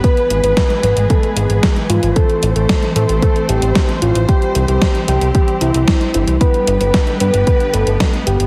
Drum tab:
HH |xxxxxxxxxxxxxxxx|xxxxxxxxxxxxxxxx|xxxxxxxxxxxxxxxx|xxxxxxxxxxxxxxxx|
SD |----o-o-----o---|----o-------o---|----o-o-----o---|----o-------o---|
BD |o---o---o---o---|o---o---o---o---|o---o---o---o---|o---o---o---o---|